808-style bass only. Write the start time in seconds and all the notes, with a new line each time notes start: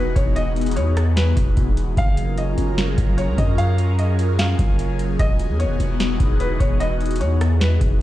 Already playing: E1
0.16 E1
0.76 E2
1.37 E1
1.57 E1
1.97 F#1
2.58 F#1
2.98 F#1
3.28 C#2
3.38 F#2
4.59 F#1
5.19 E1
5.50 E2
5.65 E1
5.80 E1
6.20 E1
6.60 E1
7.21 E2
7.81 E1